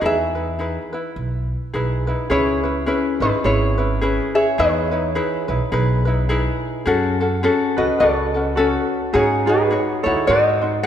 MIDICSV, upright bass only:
0, 0, Header, 1, 2, 480
1, 0, Start_track
1, 0, Key_signature, 4, "minor"
1, 0, Tempo, 570342
1, 16, Time_signature, 4, 2, 24, 8
1, 9144, End_track
2, 0, Start_track
2, 0, Title_t, "Upright bass"
2, 0, Program_c, 0, 32
2, 15, Note_on_c, 0, 40, 86
2, 641, Note_off_c, 0, 40, 0
2, 978, Note_on_c, 0, 35, 82
2, 1291, Note_off_c, 0, 35, 0
2, 1464, Note_on_c, 0, 35, 82
2, 1775, Note_off_c, 0, 35, 0
2, 1936, Note_on_c, 0, 37, 94
2, 2435, Note_off_c, 0, 37, 0
2, 2696, Note_on_c, 0, 32, 87
2, 2762, Note_off_c, 0, 32, 0
2, 2898, Note_on_c, 0, 32, 101
2, 3523, Note_off_c, 0, 32, 0
2, 3863, Note_on_c, 0, 40, 94
2, 4359, Note_off_c, 0, 40, 0
2, 4619, Note_on_c, 0, 35, 89
2, 4685, Note_off_c, 0, 35, 0
2, 4813, Note_on_c, 0, 35, 97
2, 5439, Note_off_c, 0, 35, 0
2, 5779, Note_on_c, 0, 42, 96
2, 6276, Note_off_c, 0, 42, 0
2, 6545, Note_on_c, 0, 37, 92
2, 6608, Note_off_c, 0, 37, 0
2, 6737, Note_on_c, 0, 37, 93
2, 7361, Note_off_c, 0, 37, 0
2, 7698, Note_on_c, 0, 44, 88
2, 8194, Note_off_c, 0, 44, 0
2, 8467, Note_on_c, 0, 39, 90
2, 8529, Note_off_c, 0, 39, 0
2, 8659, Note_on_c, 0, 44, 89
2, 9144, Note_off_c, 0, 44, 0
2, 9144, End_track
0, 0, End_of_file